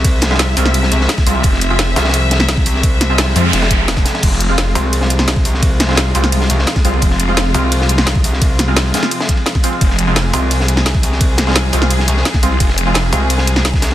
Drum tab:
CC |--------------------------------|--------------------------------|--------------------------------|x-------------------------------|
RD |x---x-xxx-x-x---x---x---x---x-x-|x---x---x---x-xxx---x---x---x---|x---x---x-x-x---x-x-x---x---x-x-|x---x---x---x---x---x---x---x---|
HH |x---x---x---o---x---x---x---o---|x---x---x---o---x---x---x---o---|x---x---x---o---x---x---x---o---|x---x---x---o---x---x---x---o---|
SD |----o-ooo-----o---o---o-o-o-----|--o-----o---o-oo----o-o-o-----o-|----o---o-------o-o-----o-o-o-o-|--o-----o---------o---o-o-----o-|
BD |o-------------------------o-----|o-------------------------o-----|o-------------------o-----o-----|o-------------------------o-----|

CC |--------------------------------|--------------------------------|--------------------------------|--------------------------------|
RD |x---x-xxx-x-x---x---x---x---x-x-|x---x---x---x---x---x---x---x---|x---x---x-x-x-x-x-x-x-x-x-x-x-x-|x---x---x---x---x---x---x---x---|
HH |x---x---x---o---x---x---x---o---|x---x---x---o---x---x---x---o---|x---x---x---o---x---x---x---o---|x---x---x---o---x---x---x---o---|
SD |----o-ooo-----o---o---o-o-o-----|--o-----o---------o---o-o-----o-|----o---o---o-o---o-----o-o-----|--o-----o---------o---o-o-----o-|
BD |o-------------------------o-----|o-------------------------o-----|o-------------------o-----o-----|o-------------------------o-----|

CC |--------------------------------|--------------------------------|
RD |x---x-xxx-x-x---x---x---x---x-x-|x---x---x---x---x---x---x---x-x-|
HH |x---x---x---o---x---x---x---o---|x---x---x---o---x---x---x---o---|
SD |----o-ooo-----o---o---o-o-o-----|--o-----o---------o---o-o-o-o---|
BD |o-------------------------o-----|o-------------------------o-----|